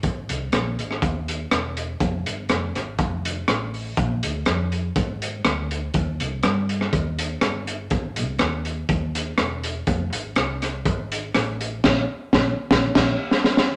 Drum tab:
CC |----------------|----------------|----------------|----------------|
HH |x-x-x-x-x-x-x-x-|x-x-x-x-x-x-x-o-|x-x-x-x-x-x-x-x-|x-x-x-x-x-x-x-x-|
SD |----r--r----r---|----r-r-----r---|----r-------r---|----r--r----r---|
BD |o-------o-------|o-------o-------|o-------o-------|o-------o-------|

CC |----------------|----------------|x--------x------|
HH |x-x-x-x-x-x-x-x-|x-x-x-x-x-x-x-x-|----------------|
SD |----r-------r---|----r-r-----r---|o---o--o-o--ooo-|
BD |o-------o-------|o-------o-------|o---o--o-o------|